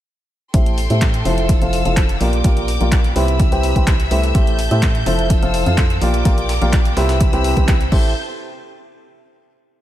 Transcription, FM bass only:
0.54 0.88 A1 medium
0.90 1.23 A2 medium
1.25 1.59 F1 medium
1.62 1.83 F1 medium
1.85 2.18 F1 medium
2.21 2.42 A#1 medium
2.44 2.78 A#1 medium
2.81 3.14 A#1 medium
3.16 3.50 C2 medium
3.52 3.73 C2 medium
3.76 4.09 C2 medium
4.11 4.33 C2 medium
4.35 4.69 A1 medium
4.71 5.04 A2 loud
5.06 5.40 F1 medium
5.43 5.64 F1 loud
5.66 5.99 F2 medium
6.01 6.23 A#1 medium
6.25 6.59 A#1 medium
6.62 6.94 A#1 loud
6.97 7.30 C2 medium
7.33 7.54 C2 medium
7.57 7.90 C2 medium
7.92 8.14 A1 loud

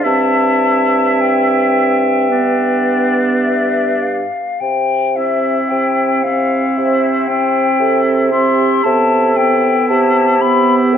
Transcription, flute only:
0.05 1.22 A5 medium
1.20 3.15 G5 soft
3.44 4.03 E5 soft
4.01 4.62 F5 soft
4.60 5.17 G5 soft
5.16 5.70 E5 medium
5.69 6.25 G5 soft
6.23 6.78 F5 medium
6.77 7.29 E5 medium
7.28 8.00 G5 medium
8.31 8.85 C6 medium
8.83 9.38 A5 medium
9.36 9.88 G5 medium
9.89 10.42 A5 medium
10.41 10.75 B5 medium
10.94 10.98 G5 medium

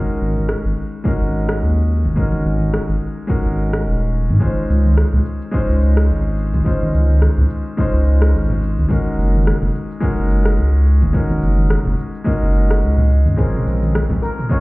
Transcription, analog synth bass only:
0.22 0.56 G#1 medium
0.65 0.73 G#1 medium
1.22 1.64 G#1 medium
1.62 2.07 D#2 loud
2.05 2.13 G#1 medium
2.46 2.80 G#1 loud
2.89 2.97 G#1 medium
3.46 3.88 G#1 loud
3.86 4.31 D#1 medium
4.30 4.38 G#2 medium
4.70 5.05 C#2 medium
5.14 5.22 C#2 medium
5.69 6.12 C#2 loud
6.10 6.55 G#1 medium
6.54 6.62 C#2 medium
6.94 7.29 C#2 medium
7.38 7.46 C#2 medium
7.94 8.35 C#2 medium
8.34 8.79 G#1 loud
8.77 8.86 C#2 medium
9.18 9.53 F#1 medium
9.62 9.70 F#1 medium
10.18 10.60 F#1 medium
10.59 11.04 C#2 loud
11.03 11.11 F#1 medium
11.43 11.77 F#1 medium
11.86 11.94 F#1 medium
12.43 12.85 F#1 loud
12.83 13.28 C#2 medium
13.26 13.35 F#2 medium
13.67 14.02 A#1 medium
14.10 14.19 A#1 medium

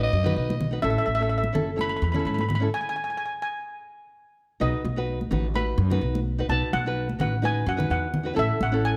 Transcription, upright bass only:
0.13 0.33 F#2 loud
0.36 0.77 B1 medium
0.84 0.95 A1 loud
1.07 1.48 A1 medium
1.55 1.96 F#1 medium
2.02 2.22 E2 loud
2.25 2.66 G#2 loud
4.61 4.72 B1 loud
4.84 5.25 B1 medium
5.31 5.72 A1 loud
5.78 5.98 F#2 loud
6.01 6.42 B1 medium
6.49 6.60 B1 loud
6.73 7.13 B1 loud
7.20 7.60 A1 medium
7.66 7.87 F#2 loud
7.90 8.31 E2 medium
8.37 8.48 A1 loud
8.61 8.97 A1 medium

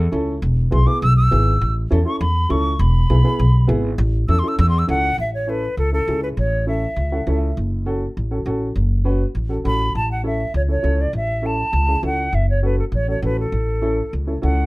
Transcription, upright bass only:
0.12 0.36 C#2 medium
0.42 0.66 E1 loud
0.72 0.84 B1 medium
1.02 1.26 B1 loud
1.32 1.56 G#1 medium
1.61 1.85 A1 medium
1.92 2.03 E2 medium
2.21 2.44 E2 loud
2.50 2.74 C#2 medium
2.79 3.03 E1 loud
3.10 3.22 B1 medium
3.39 3.63 B1 loud
3.69 3.93 G#1 medium
3.98 4.22 A1 loud
4.28 4.40 E2 medium
4.58 4.82 E2 loud
4.89 5.12 C#2 medium
5.18 5.66 A1 medium
5.77 6.01 C#2 medium
6.08 6.31 C#2 medium
6.37 6.85 A1 medium
6.96 7.20 C#2 medium
7.27 7.51 C#2 medium
7.57 8.05 F#1 medium
8.17 8.40 A1 medium
8.46 8.70 A1 medium
8.76 9.23 F#1 medium
9.35 9.59 A1 medium
9.65 9.89 A1 medium
9.95 10.43 A1 medium
10.54 10.78 C#2 medium
10.84 11.08 C#2 medium
11.13 11.61 A1 medium
11.73 11.97 C#2 medium
12.03 12.27 C#2 medium
12.33 12.80 F#1 medium
12.92 13.16 A1 medium
13.22 13.46 A1 medium
13.52 14.00 A1 medium
14.13 14.36 C#2 medium
14.43 14.66 C#2 medium

